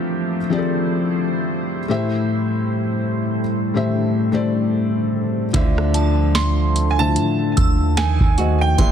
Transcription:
0.00 0.36 F3 loud
0.00 1.86 F3 medium
0.00 1.86 A3 medium
0.00 0.37 C4 loud
0.00 5.50 E4 medium
0.00 0.37 G4 loud
0.00 1.85 G4 medium
0.00 0.37 A4 loud
0.00 7.93 C5 medium
0.00 0.38 E5 loud
0.50 1.79 F3 medium
0.50 1.79 C4 medium
0.50 1.80 G4 medium
0.50 0.57 G#4 medium
0.50 1.80 D5 loud
0.58 1.83 A4 medium
1.88 3.39 A2 medium
1.88 5.50 G3 medium
1.88 3.40 A3 medium
1.88 5.50 C4 medium
1.88 3.40 G4 medium
1.88 8.74 A4 medium
1.88 3.40 C5 medium
1.88 3.41 E5 loud
3.74 4.28 A2 medium
3.74 4.28 A3 medium
3.74 4.28 G4 medium
3.74 4.29 C5 medium
3.74 4.29 E5 loud
4.32 5.45 A2 medium
4.32 5.45 A3 medium
4.32 5.46 G4 medium
4.32 5.46 C5 medium
4.32 5.47 D5 loud
5.53 7.18 D2 loud
5.53 6.85 D3 loud
5.53 8.07 D3 medium
5.53 7.95 F3 medium
5.53 6.85 A3 loud
5.53 7.95 D4 medium
5.53 5.62 E4 medium
5.53 6.86 C5 loud
5.53 7.95 E5 medium
5.53 6.86 E5 loud
5.53 kick loud
5.53 closed hi-hat medium
5.61 6.89 F4 loud
5.78 cross-stick loud
5.94 7.97 F3 medium
5.94 7.73 A5 medium
5.94 closed hi-hat medium
6.35 6.87 C6 loud
6.35 snare loud
6.35 closed hi-hat medium
6.76 closed hi-hat medium
6.91 6.99 G#5 medium
6.98 7.97 D3 medium
6.98 7.97 A3 medium
6.98 7.05 E4 medium
6.98 7.98 C5 medium
6.98 7.98 E5 medium
6.98 8.00 A5 loud
7.06 8.01 F4 medium
7.16 7.55 A2 loud
7.16 closed hi-hat medium
7.57 8.19 D#2 loud
7.57 8.34 E6 medium
7.57 kick medium
7.57 closed hi-hat medium
7.97 8.78 D#3 medium
7.97 8.78 F#3 medium
7.97 8.78 C4 medium
7.97 8.78 D#4 medium
7.97 8.78 C5 medium
7.97 8.63 G#5 loud
7.97 snare loud
7.97 closed hi-hat medium
8.20 8.76 D#2 loud
8.20 kick loud
8.37 8.75 D#3 medium
8.37 8.76 A3 medium
8.37 8.88 F#4 medium
8.37 8.76 F#4 medium
8.37 8.76 C5 medium
8.37 8.77 D#5 medium
8.37 closed hi-hat medium
8.61 8.92 G5 medium
8.78 8.92 E1 loud
8.78 8.92 E3 loud
8.78 8.92 E3 medium
8.78 8.92 A#3 loud
8.78 8.92 A#3 medium
8.78 8.92 D4 medium
8.78 8.92 G4 medium
8.78 8.92 A#4 medium
8.78 8.92 D5 medium
8.78 8.92 E5 loud
8.78 8.92 C6 medium
8.78 kick loud
8.78 closed hi-hat medium

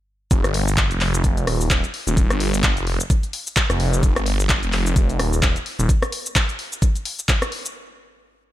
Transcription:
0.31 0.42 F1 loud
0.31 kick loud
0.31 closed hi-hat medium
0.31 shaker medium
0.44 0.89 G1 loud
0.44 cross-stick medium
0.44 closed hi-hat medium
0.44 shaker soft
0.54 open hi-hat loud
0.68 shaker medium
0.77 kick loud
0.77 clap loud
0.77 closed hi-hat medium
0.77 shaker medium
0.91 1.22 F1 loud
0.91 closed hi-hat medium
0.91 shaker soft
1.01 clap medium
1.01 open hi-hat medium
1.14 closed hi-hat soft
1.14 shaker medium
1.24 1.46 F1 loud
1.24 kick loud
1.24 closed hi-hat medium
1.24 shaker medium
1.37 closed hi-hat medium
1.37 shaker soft
1.47 1.82 D#1 loud
1.47 cross-stick medium
1.47 open hi-hat loud
1.61 shaker medium
1.70 kick loud
1.70 clap loud
1.70 closed hi-hat medium
1.70 shaker medium
1.84 closed hi-hat medium
1.84 shaker soft
1.94 open hi-hat loud
2.07 2.28 D#1 loud
2.07 closed hi-hat soft
2.07 shaker medium
2.17 kick loud
2.17 closed hi-hat medium
2.17 shaker medium
2.30 2.75 G1 loud
2.30 cross-stick medium
2.30 closed hi-hat medium
2.30 shaker soft
2.40 open hi-hat loud
2.54 shaker medium
2.64 kick loud
2.64 clap loud
2.64 closed hi-hat medium
2.64 shaker medium
2.77 2.98 F1 loud
2.77 closed hi-hat medium
2.77 shaker soft
2.87 open hi-hat loud
3.00 closed hi-hat soft
3.00 shaker medium
3.10 kick loud
3.10 closed hi-hat medium
3.10 shaker medium
3.23 closed hi-hat medium
3.23 shaker soft
3.33 open hi-hat loud
3.47 shaker medium
3.56 kick loud
3.56 clap loud
3.56 closed hi-hat medium
3.56 shaker medium
3.70 4.01 F1 loud
3.70 cross-stick medium
3.70 closed hi-hat medium
3.70 shaker soft
3.80 open hi-hat loud
3.93 closed hi-hat soft
3.93 shaker medium
4.03 4.14 F1 loud
4.03 kick loud
4.03 closed hi-hat medium
4.03 shaker medium
4.16 4.61 G1 loud
4.16 cross-stick medium
4.16 closed hi-hat soft
4.16 shaker soft
4.26 open hi-hat loud
4.40 shaker medium
4.49 kick loud
4.49 clap loud
4.49 closed hi-hat medium
4.49 shaker medium
4.63 4.95 F1 loud
4.63 closed hi-hat medium
4.63 shaker soft
4.73 clap medium
4.73 open hi-hat loud
4.86 closed hi-hat soft
4.86 shaker medium
4.96 5.18 F1 loud
4.96 kick loud
4.96 closed hi-hat medium
4.96 shaker medium
5.09 closed hi-hat medium
5.09 shaker soft
5.19 5.54 D#1 medium
5.19 cross-stick medium
5.19 open hi-hat loud
5.33 shaker medium
5.43 kick loud
5.43 clap loud
5.43 closed hi-hat medium
5.43 shaker medium
5.56 closed hi-hat medium
5.56 shaker soft
5.66 open hi-hat loud
5.79 5.88 D#1 medium
5.79 closed hi-hat soft
5.79 shaker medium
5.89 kick loud
5.89 closed hi-hat medium
5.89 shaker medium
6.02 cross-stick medium
6.02 closed hi-hat medium
6.02 shaker soft
6.12 open hi-hat loud
6.26 closed hi-hat soft
6.26 shaker medium
6.36 kick loud
6.36 clap loud
6.36 closed hi-hat medium
6.36 shaker medium
6.49 closed hi-hat medium
6.49 shaker soft
6.59 open hi-hat loud
6.72 closed hi-hat soft
6.72 shaker medium
6.82 kick loud
6.82 closed hi-hat medium
6.82 shaker medium
6.95 closed hi-hat medium
6.95 shaker soft
7.05 open hi-hat loud
7.19 closed hi-hat soft
7.19 shaker medium
7.29 kick loud
7.29 clap loud
7.29 closed hi-hat medium
7.29 shaker medium
7.42 cross-stick medium
7.42 closed hi-hat medium
7.42 shaker soft
7.52 open hi-hat loud
7.65 closed hi-hat soft
7.65 shaker medium

